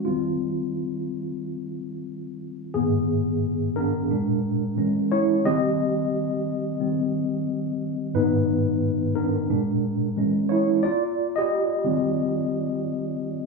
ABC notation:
X:1
M:4/4
L:1/16
Q:"Swing 16ths" 1/4=89
K:Eb
V:1 name="Tine electric piano"
F12 z4 | [_CA]6 [DB]8 [=E^c]2 | [Ge]12 z4 | [E_c]6 [DB]8 [=E^c]2 |
[Fd]3 [Ge]8 z4 z |]
V:2 name="Tine electric piano" clef=bass
[E,G,C]16 | [A,,E,]6 z2 [B,,A,D]2 z2 [=E,^G,^C]2 z2 | [E,G,C]6 z2 [E,G,C]2 z6 | [A,,E,_C]2 z6 [B,,A,D]2 z2 [=E,^G,^C]4 |
z6 [E,G,C]6 z4 |]